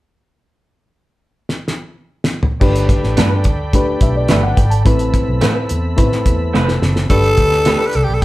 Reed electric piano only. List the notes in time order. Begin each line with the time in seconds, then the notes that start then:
2.61 A3 D4 G4 B4
3.73 A3 D4 G4 B4
4.03 E5
4.17 D5
4.30 E5
4.43 F#5
4.57 G5
4.70 A5
4.85 A3 C4 E4 B4
5.96 A3 B3 E4 B4
6.03 C4
7.10 A3 D4 G4 B4